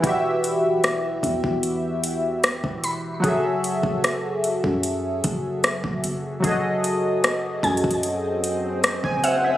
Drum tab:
HH |x-----x-----x-----x-----x-----x-----x-----x-----|x-----x-----x-----x-----x-----x-----x-----x-----|x-----x-----x-----x-x-x-x-----x-----x-----x-----|
SD |------------r-----------------------r-----------|------------r-----------------------r-----------|------------r-----------------------r-----------|
BD |o-----------------o--o-----------------o--------|o--------o-----------o--------o--------o--------|o-----------------o--o-----------------o--------|